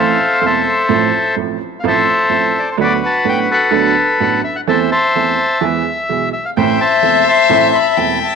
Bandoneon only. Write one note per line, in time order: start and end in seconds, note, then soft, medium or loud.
0.00 0.44 A4 medium
0.00 0.45 C5 medium
0.00 0.40 E5 medium
0.00 0.46 F5 loud
0.46 1.35 A4 medium
0.46 1.35 C5 medium
0.46 1.35 E5 loud
1.80 1.86 F5 medium
1.87 2.76 A4 medium
1.87 2.70 C5 medium
1.87 2.59 E5 loud
2.59 2.69 D5 loud
2.72 2.76 C5 medium
2.81 3.70 F#4 medium
2.81 3.50 B4 medium
2.81 2.93 D5 loud
3.06 3.26 A5 loud
3.29 3.39 G5 loud
3.51 4.41 A4 medium
3.51 4.41 B4 medium
3.51 3.95 F#5 loud
4.20 4.42 F#5 loud
4.44 4.56 E5 loud
4.56 4.61 F#5 loud
4.69 4.91 C5 medium
4.69 4.90 E5 medium
4.69 4.79 A5 loud
4.92 5.58 C5 medium
4.92 6.29 E5 medium
4.92 5.64 A5 loud
6.33 6.45 E5 loud
6.45 6.50 F5 medium
6.57 6.79 C5 medium
6.57 6.80 E5 medium
6.57 6.81 G5 loud
6.81 7.71 C5 medium
6.81 7.28 E5 medium
6.81 7.24 A5 loud
7.29 7.74 E5 medium
7.29 8.18 A5 medium
7.29 7.77 C6 loud
7.75 8.35 E5 medium
7.75 8.19 B5 loud
8.23 8.34 A5 loud